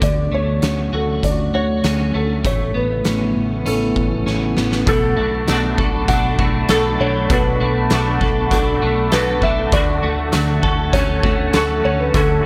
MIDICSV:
0, 0, Header, 1, 7, 480
1, 0, Start_track
1, 0, Key_signature, 2, "minor"
1, 0, Tempo, 606061
1, 20, Time_signature, 4, 2, 24, 8
1, 9868, End_track
2, 0, Start_track
2, 0, Title_t, "Felt piano"
2, 0, Program_c, 0, 0
2, 27, Note_on_c, 0, 74, 95
2, 270, Note_off_c, 0, 74, 0
2, 273, Note_on_c, 0, 73, 96
2, 750, Note_on_c, 0, 69, 70
2, 760, Note_off_c, 0, 73, 0
2, 985, Note_on_c, 0, 74, 90
2, 992, Note_off_c, 0, 69, 0
2, 1226, Note_on_c, 0, 73, 98
2, 1229, Note_off_c, 0, 74, 0
2, 1708, Note_on_c, 0, 69, 75
2, 1717, Note_off_c, 0, 73, 0
2, 1951, Note_off_c, 0, 69, 0
2, 1952, Note_on_c, 0, 73, 86
2, 2189, Note_on_c, 0, 71, 77
2, 2193, Note_off_c, 0, 73, 0
2, 2633, Note_off_c, 0, 71, 0
2, 2908, Note_on_c, 0, 69, 83
2, 3592, Note_off_c, 0, 69, 0
2, 3870, Note_on_c, 0, 69, 117
2, 4553, Note_off_c, 0, 69, 0
2, 4819, Note_on_c, 0, 78, 99
2, 5308, Note_on_c, 0, 69, 90
2, 5314, Note_off_c, 0, 78, 0
2, 5549, Note_on_c, 0, 73, 97
2, 5551, Note_off_c, 0, 69, 0
2, 5791, Note_off_c, 0, 73, 0
2, 5796, Note_on_c, 0, 71, 79
2, 6476, Note_off_c, 0, 71, 0
2, 6750, Note_on_c, 0, 69, 79
2, 7228, Note_on_c, 0, 71, 90
2, 7239, Note_off_c, 0, 69, 0
2, 7469, Note_on_c, 0, 76, 108
2, 7471, Note_off_c, 0, 71, 0
2, 7708, Note_on_c, 0, 74, 91
2, 7711, Note_off_c, 0, 76, 0
2, 8392, Note_off_c, 0, 74, 0
2, 8660, Note_on_c, 0, 73, 96
2, 9140, Note_on_c, 0, 69, 83
2, 9154, Note_off_c, 0, 73, 0
2, 9385, Note_on_c, 0, 73, 110
2, 9387, Note_off_c, 0, 69, 0
2, 9504, Note_on_c, 0, 71, 84
2, 9506, Note_off_c, 0, 73, 0
2, 9624, Note_on_c, 0, 69, 105
2, 9625, Note_off_c, 0, 71, 0
2, 9868, Note_off_c, 0, 69, 0
2, 9868, End_track
3, 0, Start_track
3, 0, Title_t, "Ambient pad"
3, 0, Program_c, 1, 92
3, 0, Note_on_c, 1, 54, 63
3, 14, Note_on_c, 1, 66, 76
3, 16, Note_on_c, 1, 50, 65
3, 16, Note_on_c, 1, 57, 68
3, 1904, Note_off_c, 1, 54, 0
3, 1917, Note_off_c, 1, 66, 0
3, 1919, Note_off_c, 1, 50, 0
3, 1919, Note_off_c, 1, 57, 0
3, 1934, Note_on_c, 1, 52, 56
3, 1937, Note_on_c, 1, 49, 68
3, 1937, Note_on_c, 1, 59, 66
3, 1937, Note_on_c, 1, 64, 69
3, 1939, Note_on_c, 1, 57, 66
3, 3837, Note_off_c, 1, 52, 0
3, 3839, Note_off_c, 1, 49, 0
3, 3839, Note_off_c, 1, 59, 0
3, 3839, Note_off_c, 1, 64, 0
3, 3840, Note_off_c, 1, 57, 0
3, 3850, Note_on_c, 1, 81, 77
3, 3852, Note_on_c, 1, 78, 67
3, 3855, Note_on_c, 1, 83, 59
3, 3856, Note_on_c, 1, 69, 68
3, 7663, Note_off_c, 1, 81, 0
3, 7666, Note_off_c, 1, 83, 0
3, 7704, Note_on_c, 1, 81, 82
3, 7706, Note_on_c, 1, 85, 71
3, 9603, Note_off_c, 1, 85, 0
3, 9612, Note_on_c, 1, 83, 66
3, 9868, Note_off_c, 1, 69, 0
3, 9868, Note_off_c, 1, 78, 0
3, 9868, Note_off_c, 1, 81, 0
3, 9868, Note_off_c, 1, 83, 0
3, 9868, End_track
4, 0, Start_track
4, 0, Title_t, "Clean electric guitar"
4, 0, Program_c, 2, 27
4, 0, Note_on_c, 2, 57, 50
4, 0, Note_on_c, 2, 62, 54
4, 0, Note_on_c, 2, 66, 59
4, 10, Note_on_c, 2, 50, 74
4, 247, Note_off_c, 2, 57, 0
4, 250, Note_on_c, 2, 57, 55
4, 489, Note_off_c, 2, 62, 0
4, 492, Note_on_c, 2, 61, 49
4, 733, Note_off_c, 2, 66, 0
4, 736, Note_on_c, 2, 66, 63
4, 1210, Note_off_c, 2, 66, 0
4, 1220, Note_on_c, 2, 66, 63
4, 1454, Note_off_c, 2, 61, 0
4, 1457, Note_on_c, 2, 61, 58
4, 1693, Note_off_c, 2, 57, 0
4, 1696, Note_on_c, 2, 57, 57
4, 1935, Note_off_c, 2, 50, 0
4, 1938, Note_off_c, 2, 57, 0
4, 1938, Note_on_c, 2, 57, 73
4, 1988, Note_off_c, 2, 66, 0
4, 2172, Note_on_c, 2, 59, 59
4, 2196, Note_off_c, 2, 61, 0
4, 2419, Note_on_c, 2, 61, 56
4, 2887, Note_off_c, 2, 61, 0
4, 2896, Note_on_c, 2, 61, 62
4, 3367, Note_off_c, 2, 61, 0
4, 3377, Note_on_c, 2, 61, 53
4, 3615, Note_off_c, 2, 59, 0
4, 3618, Note_on_c, 2, 59, 45
4, 3858, Note_on_c, 2, 47, 84
4, 3882, Note_off_c, 2, 57, 0
4, 3906, Note_off_c, 2, 61, 0
4, 4089, Note_off_c, 2, 59, 0
4, 4092, Note_on_c, 2, 57, 62
4, 4337, Note_on_c, 2, 62, 62
4, 4576, Note_on_c, 2, 69, 61
4, 4815, Note_off_c, 2, 62, 0
4, 4819, Note_on_c, 2, 62, 62
4, 5056, Note_off_c, 2, 57, 0
4, 5059, Note_on_c, 2, 57, 65
4, 5298, Note_off_c, 2, 69, 0
4, 5301, Note_on_c, 2, 69, 68
4, 5541, Note_off_c, 2, 62, 0
4, 5544, Note_on_c, 2, 62, 56
4, 5771, Note_off_c, 2, 47, 0
4, 5780, Note_on_c, 2, 47, 78
4, 6019, Note_off_c, 2, 57, 0
4, 6022, Note_on_c, 2, 57, 61
4, 6262, Note_off_c, 2, 62, 0
4, 6265, Note_on_c, 2, 62, 55
4, 6497, Note_off_c, 2, 69, 0
4, 6500, Note_on_c, 2, 69, 64
4, 6741, Note_off_c, 2, 62, 0
4, 6744, Note_on_c, 2, 62, 62
4, 6983, Note_off_c, 2, 57, 0
4, 6986, Note_on_c, 2, 57, 68
4, 7219, Note_off_c, 2, 69, 0
4, 7222, Note_on_c, 2, 69, 78
4, 7463, Note_off_c, 2, 62, 0
4, 7466, Note_on_c, 2, 62, 65
4, 7700, Note_off_c, 2, 47, 0
4, 7706, Note_on_c, 2, 50, 85
4, 7941, Note_off_c, 2, 57, 0
4, 7944, Note_on_c, 2, 57, 64
4, 8417, Note_off_c, 2, 69, 0
4, 8420, Note_on_c, 2, 69, 71
4, 8653, Note_off_c, 2, 62, 0
4, 8656, Note_on_c, 2, 61, 72
4, 8894, Note_off_c, 2, 57, 0
4, 8897, Note_on_c, 2, 57, 71
4, 9135, Note_off_c, 2, 69, 0
4, 9139, Note_on_c, 2, 69, 72
4, 9371, Note_off_c, 2, 61, 0
4, 9380, Note_on_c, 2, 61, 56
4, 9618, Note_off_c, 2, 50, 0
4, 9621, Note_on_c, 2, 50, 89
4, 9856, Note_off_c, 2, 57, 0
4, 9868, Note_off_c, 2, 50, 0
4, 9868, Note_off_c, 2, 61, 0
4, 9868, Note_off_c, 2, 69, 0
4, 9868, End_track
5, 0, Start_track
5, 0, Title_t, "Clean electric guitar"
5, 0, Program_c, 3, 27
5, 3853, Note_on_c, 3, 47, 71
5, 3861, Note_on_c, 3, 54, 73
5, 3869, Note_on_c, 3, 57, 91
5, 3875, Note_on_c, 3, 62, 70
5, 3883, Note_on_c, 3, 66, 80
5, 4078, Note_off_c, 3, 66, 0
5, 4088, Note_on_c, 3, 66, 51
5, 4096, Note_off_c, 3, 47, 0
5, 4101, Note_off_c, 3, 54, 0
5, 4103, Note_off_c, 3, 62, 0
5, 4104, Note_off_c, 3, 57, 0
5, 4112, Note_on_c, 3, 62, 47
5, 4130, Note_on_c, 3, 57, 43
5, 4334, Note_off_c, 3, 66, 0
5, 4337, Note_on_c, 3, 47, 82
5, 4343, Note_off_c, 3, 57, 0
5, 4346, Note_off_c, 3, 62, 0
5, 4349, Note_on_c, 3, 54, 72
5, 4353, Note_on_c, 3, 57, 91
5, 4362, Note_on_c, 3, 62, 85
5, 4367, Note_on_c, 3, 66, 93
5, 4565, Note_off_c, 3, 66, 0
5, 4575, Note_on_c, 3, 66, 54
5, 4578, Note_off_c, 3, 47, 0
5, 4584, Note_off_c, 3, 54, 0
5, 4586, Note_off_c, 3, 57, 0
5, 4588, Note_off_c, 3, 62, 0
5, 4598, Note_on_c, 3, 62, 52
5, 4618, Note_on_c, 3, 57, 43
5, 4817, Note_off_c, 3, 66, 0
5, 4821, Note_on_c, 3, 54, 58
5, 4827, Note_off_c, 3, 57, 0
5, 4829, Note_off_c, 3, 62, 0
5, 4837, Note_on_c, 3, 57, 54
5, 4851, Note_on_c, 3, 62, 63
5, 4861, Note_on_c, 3, 66, 59
5, 5047, Note_off_c, 3, 66, 0
5, 5057, Note_on_c, 3, 66, 47
5, 5060, Note_off_c, 3, 54, 0
5, 5068, Note_off_c, 3, 57, 0
5, 5069, Note_off_c, 3, 62, 0
5, 5078, Note_on_c, 3, 62, 46
5, 5099, Note_on_c, 3, 57, 44
5, 5294, Note_on_c, 3, 47, 85
5, 5298, Note_off_c, 3, 66, 0
5, 5299, Note_off_c, 3, 57, 0
5, 5303, Note_on_c, 3, 54, 77
5, 5307, Note_off_c, 3, 62, 0
5, 5309, Note_on_c, 3, 57, 86
5, 5316, Note_on_c, 3, 62, 80
5, 5322, Note_on_c, 3, 66, 84
5, 5525, Note_off_c, 3, 66, 0
5, 5534, Note_on_c, 3, 66, 57
5, 5537, Note_off_c, 3, 47, 0
5, 5541, Note_off_c, 3, 54, 0
5, 5544, Note_off_c, 3, 57, 0
5, 5548, Note_off_c, 3, 62, 0
5, 5560, Note_on_c, 3, 62, 52
5, 5577, Note_on_c, 3, 57, 54
5, 5777, Note_off_c, 3, 66, 0
5, 5780, Note_on_c, 3, 47, 85
5, 5790, Note_off_c, 3, 62, 0
5, 5791, Note_off_c, 3, 57, 0
5, 5791, Note_on_c, 3, 54, 86
5, 5801, Note_on_c, 3, 57, 80
5, 5802, Note_on_c, 3, 62, 94
5, 5810, Note_on_c, 3, 66, 93
5, 6011, Note_off_c, 3, 66, 0
5, 6020, Note_off_c, 3, 47, 0
5, 6021, Note_on_c, 3, 66, 54
5, 6025, Note_off_c, 3, 54, 0
5, 6030, Note_off_c, 3, 57, 0
5, 6031, Note_off_c, 3, 62, 0
5, 6044, Note_on_c, 3, 62, 48
5, 6063, Note_on_c, 3, 57, 47
5, 6256, Note_on_c, 3, 47, 87
5, 6260, Note_off_c, 3, 66, 0
5, 6268, Note_off_c, 3, 57, 0
5, 6270, Note_on_c, 3, 54, 84
5, 6272, Note_off_c, 3, 62, 0
5, 6277, Note_on_c, 3, 57, 87
5, 6283, Note_on_c, 3, 62, 90
5, 6288, Note_on_c, 3, 66, 85
5, 6489, Note_off_c, 3, 66, 0
5, 6498, Note_off_c, 3, 47, 0
5, 6498, Note_on_c, 3, 66, 55
5, 6505, Note_off_c, 3, 54, 0
5, 6508, Note_off_c, 3, 57, 0
5, 6512, Note_off_c, 3, 62, 0
5, 6520, Note_on_c, 3, 62, 51
5, 6543, Note_on_c, 3, 57, 47
5, 6737, Note_on_c, 3, 54, 67
5, 6739, Note_off_c, 3, 66, 0
5, 6741, Note_off_c, 3, 57, 0
5, 6750, Note_off_c, 3, 62, 0
5, 6750, Note_on_c, 3, 57, 68
5, 6766, Note_on_c, 3, 62, 57
5, 6775, Note_on_c, 3, 66, 70
5, 6965, Note_off_c, 3, 66, 0
5, 6975, Note_on_c, 3, 66, 49
5, 6978, Note_off_c, 3, 54, 0
5, 6985, Note_off_c, 3, 57, 0
5, 6988, Note_off_c, 3, 62, 0
5, 6998, Note_on_c, 3, 62, 44
5, 7017, Note_on_c, 3, 57, 40
5, 7214, Note_on_c, 3, 47, 82
5, 7217, Note_off_c, 3, 66, 0
5, 7220, Note_off_c, 3, 57, 0
5, 7224, Note_on_c, 3, 54, 81
5, 7229, Note_off_c, 3, 62, 0
5, 7229, Note_on_c, 3, 57, 95
5, 7237, Note_on_c, 3, 62, 89
5, 7246, Note_on_c, 3, 66, 94
5, 7442, Note_off_c, 3, 66, 0
5, 7452, Note_on_c, 3, 66, 59
5, 7457, Note_off_c, 3, 47, 0
5, 7462, Note_off_c, 3, 54, 0
5, 7465, Note_off_c, 3, 57, 0
5, 7465, Note_off_c, 3, 62, 0
5, 7474, Note_on_c, 3, 62, 48
5, 7493, Note_on_c, 3, 57, 49
5, 7696, Note_off_c, 3, 66, 0
5, 7697, Note_on_c, 3, 50, 83
5, 7701, Note_off_c, 3, 57, 0
5, 7703, Note_on_c, 3, 54, 81
5, 7707, Note_off_c, 3, 62, 0
5, 7710, Note_on_c, 3, 57, 71
5, 7724, Note_on_c, 3, 66, 92
5, 7926, Note_off_c, 3, 66, 0
5, 7936, Note_on_c, 3, 66, 53
5, 7938, Note_off_c, 3, 50, 0
5, 7941, Note_off_c, 3, 54, 0
5, 7945, Note_off_c, 3, 57, 0
5, 7982, Note_on_c, 3, 57, 45
5, 8173, Note_on_c, 3, 50, 83
5, 8178, Note_off_c, 3, 66, 0
5, 8178, Note_on_c, 3, 54, 85
5, 8181, Note_off_c, 3, 57, 0
5, 8190, Note_on_c, 3, 57, 81
5, 8203, Note_on_c, 3, 66, 82
5, 8398, Note_off_c, 3, 66, 0
5, 8407, Note_on_c, 3, 66, 59
5, 8416, Note_off_c, 3, 50, 0
5, 8419, Note_off_c, 3, 54, 0
5, 8425, Note_off_c, 3, 57, 0
5, 8434, Note_on_c, 3, 61, 51
5, 8449, Note_on_c, 3, 57, 55
5, 8648, Note_on_c, 3, 54, 68
5, 8653, Note_off_c, 3, 66, 0
5, 8657, Note_off_c, 3, 57, 0
5, 8666, Note_on_c, 3, 57, 71
5, 8667, Note_off_c, 3, 61, 0
5, 8679, Note_on_c, 3, 61, 60
5, 8691, Note_on_c, 3, 66, 71
5, 8883, Note_off_c, 3, 66, 0
5, 8893, Note_on_c, 3, 66, 54
5, 8894, Note_off_c, 3, 54, 0
5, 8903, Note_off_c, 3, 57, 0
5, 8905, Note_off_c, 3, 61, 0
5, 8914, Note_on_c, 3, 61, 53
5, 8933, Note_on_c, 3, 57, 45
5, 9131, Note_on_c, 3, 50, 78
5, 9136, Note_off_c, 3, 66, 0
5, 9140, Note_off_c, 3, 57, 0
5, 9142, Note_on_c, 3, 54, 91
5, 9147, Note_off_c, 3, 61, 0
5, 9149, Note_on_c, 3, 57, 98
5, 9157, Note_on_c, 3, 61, 97
5, 9161, Note_on_c, 3, 66, 97
5, 9352, Note_off_c, 3, 66, 0
5, 9361, Note_on_c, 3, 66, 57
5, 9375, Note_off_c, 3, 50, 0
5, 9376, Note_off_c, 3, 61, 0
5, 9381, Note_off_c, 3, 54, 0
5, 9384, Note_off_c, 3, 57, 0
5, 9385, Note_on_c, 3, 61, 52
5, 9401, Note_on_c, 3, 57, 44
5, 9607, Note_on_c, 3, 50, 75
5, 9610, Note_off_c, 3, 66, 0
5, 9613, Note_off_c, 3, 57, 0
5, 9618, Note_on_c, 3, 54, 79
5, 9622, Note_on_c, 3, 57, 93
5, 9623, Note_off_c, 3, 61, 0
5, 9631, Note_on_c, 3, 61, 87
5, 9636, Note_on_c, 3, 66, 87
5, 9834, Note_off_c, 3, 66, 0
5, 9844, Note_on_c, 3, 66, 57
5, 9853, Note_off_c, 3, 50, 0
5, 9859, Note_off_c, 3, 54, 0
5, 9859, Note_off_c, 3, 61, 0
5, 9861, Note_off_c, 3, 57, 0
5, 9868, Note_off_c, 3, 66, 0
5, 9868, End_track
6, 0, Start_track
6, 0, Title_t, "Fingered electric bass"
6, 0, Program_c, 4, 33
6, 16, Note_on_c, 4, 38, 89
6, 229, Note_off_c, 4, 38, 0
6, 256, Note_on_c, 4, 38, 90
6, 469, Note_off_c, 4, 38, 0
6, 496, Note_on_c, 4, 38, 88
6, 709, Note_off_c, 4, 38, 0
6, 736, Note_on_c, 4, 38, 93
6, 949, Note_off_c, 4, 38, 0
6, 977, Note_on_c, 4, 38, 84
6, 1190, Note_off_c, 4, 38, 0
6, 1219, Note_on_c, 4, 38, 88
6, 1430, Note_off_c, 4, 38, 0
6, 1460, Note_on_c, 4, 38, 90
6, 1671, Note_off_c, 4, 38, 0
6, 1702, Note_on_c, 4, 38, 94
6, 1912, Note_off_c, 4, 38, 0
6, 1937, Note_on_c, 4, 33, 94
6, 2149, Note_off_c, 4, 33, 0
6, 2184, Note_on_c, 4, 33, 99
6, 2393, Note_off_c, 4, 33, 0
6, 2422, Note_on_c, 4, 33, 82
6, 2632, Note_off_c, 4, 33, 0
6, 2663, Note_on_c, 4, 33, 81
6, 2873, Note_off_c, 4, 33, 0
6, 2903, Note_on_c, 4, 33, 79
6, 3113, Note_off_c, 4, 33, 0
6, 3138, Note_on_c, 4, 33, 86
6, 3350, Note_off_c, 4, 33, 0
6, 3382, Note_on_c, 4, 33, 84
6, 3592, Note_off_c, 4, 33, 0
6, 3629, Note_on_c, 4, 33, 92
6, 3836, Note_off_c, 4, 33, 0
6, 3859, Note_on_c, 4, 35, 101
6, 4071, Note_off_c, 4, 35, 0
6, 4105, Note_on_c, 4, 35, 94
6, 4314, Note_off_c, 4, 35, 0
6, 4344, Note_on_c, 4, 35, 108
6, 4553, Note_off_c, 4, 35, 0
6, 4581, Note_on_c, 4, 35, 92
6, 4792, Note_off_c, 4, 35, 0
6, 4817, Note_on_c, 4, 35, 86
6, 5029, Note_off_c, 4, 35, 0
6, 5060, Note_on_c, 4, 35, 100
6, 5271, Note_off_c, 4, 35, 0
6, 5305, Note_on_c, 4, 35, 96
6, 5514, Note_off_c, 4, 35, 0
6, 5548, Note_on_c, 4, 35, 108
6, 5756, Note_off_c, 4, 35, 0
6, 5782, Note_on_c, 4, 35, 106
6, 5992, Note_off_c, 4, 35, 0
6, 6026, Note_on_c, 4, 35, 87
6, 6234, Note_off_c, 4, 35, 0
6, 6270, Note_on_c, 4, 35, 102
6, 6477, Note_off_c, 4, 35, 0
6, 6503, Note_on_c, 4, 35, 84
6, 6713, Note_off_c, 4, 35, 0
6, 6741, Note_on_c, 4, 35, 109
6, 6952, Note_off_c, 4, 35, 0
6, 6991, Note_on_c, 4, 35, 115
6, 7197, Note_off_c, 4, 35, 0
6, 7232, Note_on_c, 4, 35, 100
6, 7438, Note_off_c, 4, 35, 0
6, 7462, Note_on_c, 4, 35, 107
6, 7672, Note_off_c, 4, 35, 0
6, 7704, Note_on_c, 4, 38, 110
6, 7914, Note_off_c, 4, 38, 0
6, 7948, Note_on_c, 4, 38, 109
6, 8155, Note_off_c, 4, 38, 0
6, 8188, Note_on_c, 4, 38, 90
6, 8396, Note_off_c, 4, 38, 0
6, 8420, Note_on_c, 4, 38, 100
6, 8631, Note_off_c, 4, 38, 0
6, 8661, Note_on_c, 4, 38, 106
6, 8871, Note_off_c, 4, 38, 0
6, 8900, Note_on_c, 4, 38, 112
6, 9111, Note_off_c, 4, 38, 0
6, 9149, Note_on_c, 4, 38, 106
6, 9356, Note_off_c, 4, 38, 0
6, 9384, Note_on_c, 4, 38, 104
6, 9594, Note_off_c, 4, 38, 0
6, 9617, Note_on_c, 4, 38, 102
6, 9830, Note_off_c, 4, 38, 0
6, 9868, End_track
7, 0, Start_track
7, 0, Title_t, "Drums"
7, 14, Note_on_c, 9, 36, 99
7, 15, Note_on_c, 9, 42, 65
7, 93, Note_off_c, 9, 36, 0
7, 95, Note_off_c, 9, 42, 0
7, 493, Note_on_c, 9, 42, 68
7, 498, Note_on_c, 9, 38, 100
7, 572, Note_off_c, 9, 42, 0
7, 577, Note_off_c, 9, 38, 0
7, 976, Note_on_c, 9, 36, 78
7, 980, Note_on_c, 9, 42, 70
7, 1055, Note_off_c, 9, 36, 0
7, 1059, Note_off_c, 9, 42, 0
7, 1456, Note_on_c, 9, 42, 70
7, 1460, Note_on_c, 9, 38, 89
7, 1535, Note_off_c, 9, 42, 0
7, 1540, Note_off_c, 9, 38, 0
7, 1937, Note_on_c, 9, 36, 98
7, 1939, Note_on_c, 9, 42, 57
7, 2016, Note_off_c, 9, 36, 0
7, 2018, Note_off_c, 9, 42, 0
7, 2412, Note_on_c, 9, 42, 73
7, 2417, Note_on_c, 9, 38, 99
7, 2491, Note_off_c, 9, 42, 0
7, 2496, Note_off_c, 9, 38, 0
7, 2900, Note_on_c, 9, 42, 67
7, 2979, Note_off_c, 9, 42, 0
7, 3137, Note_on_c, 9, 36, 72
7, 3217, Note_off_c, 9, 36, 0
7, 3380, Note_on_c, 9, 38, 43
7, 3459, Note_off_c, 9, 38, 0
7, 3617, Note_on_c, 9, 38, 75
7, 3696, Note_off_c, 9, 38, 0
7, 3737, Note_on_c, 9, 38, 62
7, 3817, Note_off_c, 9, 38, 0
7, 3857, Note_on_c, 9, 36, 118
7, 3857, Note_on_c, 9, 42, 73
7, 3936, Note_off_c, 9, 36, 0
7, 3937, Note_off_c, 9, 42, 0
7, 4337, Note_on_c, 9, 42, 70
7, 4341, Note_on_c, 9, 54, 64
7, 4342, Note_on_c, 9, 38, 116
7, 4416, Note_off_c, 9, 42, 0
7, 4420, Note_off_c, 9, 54, 0
7, 4421, Note_off_c, 9, 38, 0
7, 4580, Note_on_c, 9, 36, 88
7, 4659, Note_off_c, 9, 36, 0
7, 4818, Note_on_c, 9, 36, 96
7, 4819, Note_on_c, 9, 42, 75
7, 4897, Note_off_c, 9, 36, 0
7, 4898, Note_off_c, 9, 42, 0
7, 5059, Note_on_c, 9, 36, 88
7, 5138, Note_off_c, 9, 36, 0
7, 5295, Note_on_c, 9, 42, 71
7, 5296, Note_on_c, 9, 54, 70
7, 5300, Note_on_c, 9, 38, 111
7, 5375, Note_off_c, 9, 42, 0
7, 5375, Note_off_c, 9, 54, 0
7, 5379, Note_off_c, 9, 38, 0
7, 5781, Note_on_c, 9, 36, 127
7, 5782, Note_on_c, 9, 42, 67
7, 5860, Note_off_c, 9, 36, 0
7, 5861, Note_off_c, 9, 42, 0
7, 6257, Note_on_c, 9, 42, 80
7, 6261, Note_on_c, 9, 54, 64
7, 6262, Note_on_c, 9, 38, 114
7, 6336, Note_off_c, 9, 42, 0
7, 6340, Note_off_c, 9, 54, 0
7, 6342, Note_off_c, 9, 38, 0
7, 6503, Note_on_c, 9, 36, 83
7, 6582, Note_off_c, 9, 36, 0
7, 6741, Note_on_c, 9, 36, 93
7, 6743, Note_on_c, 9, 42, 74
7, 6821, Note_off_c, 9, 36, 0
7, 6823, Note_off_c, 9, 42, 0
7, 7221, Note_on_c, 9, 42, 73
7, 7221, Note_on_c, 9, 54, 68
7, 7225, Note_on_c, 9, 38, 108
7, 7300, Note_off_c, 9, 42, 0
7, 7300, Note_off_c, 9, 54, 0
7, 7304, Note_off_c, 9, 38, 0
7, 7460, Note_on_c, 9, 36, 69
7, 7539, Note_off_c, 9, 36, 0
7, 7699, Note_on_c, 9, 42, 78
7, 7701, Note_on_c, 9, 36, 120
7, 7778, Note_off_c, 9, 42, 0
7, 7780, Note_off_c, 9, 36, 0
7, 8175, Note_on_c, 9, 42, 79
7, 8179, Note_on_c, 9, 54, 67
7, 8181, Note_on_c, 9, 38, 108
7, 8255, Note_off_c, 9, 42, 0
7, 8258, Note_off_c, 9, 54, 0
7, 8260, Note_off_c, 9, 38, 0
7, 8420, Note_on_c, 9, 36, 83
7, 8499, Note_off_c, 9, 36, 0
7, 8658, Note_on_c, 9, 36, 92
7, 8658, Note_on_c, 9, 42, 82
7, 8737, Note_off_c, 9, 36, 0
7, 8738, Note_off_c, 9, 42, 0
7, 8898, Note_on_c, 9, 36, 92
7, 8977, Note_off_c, 9, 36, 0
7, 9134, Note_on_c, 9, 42, 77
7, 9135, Note_on_c, 9, 54, 67
7, 9139, Note_on_c, 9, 38, 114
7, 9214, Note_off_c, 9, 42, 0
7, 9214, Note_off_c, 9, 54, 0
7, 9218, Note_off_c, 9, 38, 0
7, 9616, Note_on_c, 9, 42, 76
7, 9617, Note_on_c, 9, 36, 118
7, 9695, Note_off_c, 9, 42, 0
7, 9696, Note_off_c, 9, 36, 0
7, 9868, End_track
0, 0, End_of_file